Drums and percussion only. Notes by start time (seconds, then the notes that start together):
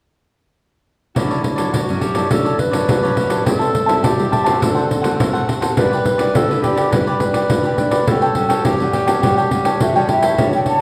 1.16 pandeiro
1.31 pandeiro
1.44 pandeiro
1.58 pandeiro
1.74 pandeiro
1.89 pandeiro
2.01 pandeiro
2.15 pandeiro
2.31 pandeiro
2.46 pandeiro
2.59 pandeiro
2.73 pandeiro
2.89 pandeiro
3.04 pandeiro
3.17 pandeiro
3.30 pandeiro
3.46 pandeiro
3.61 pandeiro
3.75 pandeiro
3.89 pandeiro
4.04 pandeiro
4.19 pandeiro
4.33 pandeiro
4.46 pandeiro
4.62 pandeiro
4.77 pandeiro
4.91 pandeiro
5.04 pandeiro
5.20 pandeiro
5.35 pandeiro
5.49 pandeiro
5.62 pandeiro
5.77 pandeiro
5.93 pandeiro
6.05 pandeiro
6.19 pandeiro
6.35 pandeiro
6.51 pandeiro
6.64 pandeiro
6.77 pandeiro
6.93 pandeiro
7.07 pandeiro
7.20 pandeiro
7.34 pandeiro
7.50 pandeiro
7.64 pandeiro
7.78 pandeiro
7.91 pandeiro
8.07 pandeiro
8.22 pandeiro
8.35 pandeiro
8.50 pandeiro
8.65 pandeiro
8.80 pandeiro
8.93 pandeiro
9.08 pandeiro
9.23 pandeiro
9.38 pandeiro
9.51 pandeiro
9.65 pandeiro
9.80 pandeiro
9.96 pandeiro
10.09 pandeiro
10.23 pandeiro
10.38 pandeiro
10.53 pandeiro
10.66 pandeiro